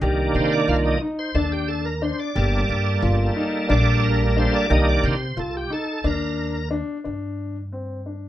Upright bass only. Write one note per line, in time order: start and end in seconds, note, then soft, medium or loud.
0.01 0.27 C2 medium
0.35 0.60 C3 medium
0.68 0.93 C2 medium
1.35 2.11 D#2 medium
2.36 2.61 G1 loud
3.02 3.28 G1 medium
3.69 4.45 A#1 medium
4.70 4.95 C2 loud
5.03 5.29 C3 loud
5.37 5.62 C2 medium
6.04 6.80 D#2 medium
7.05 8.29 G2 medium